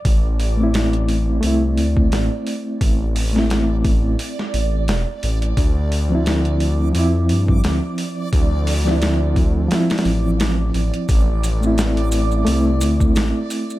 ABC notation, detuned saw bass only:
X:1
M:4/4
L:1/8
Q:"Swing 16ths" 1/4=87
K:Am
V:1 name="Detuned saw bass" clef=bass
A,,,4 C,, D,, A,,, z | A,,,4 z A,,, E,,, A,,, | D,,4 F,, G,, D,, z | D,,4 z A,,,2 A,,, |
A,,,4 C,, D,, A,,, z |]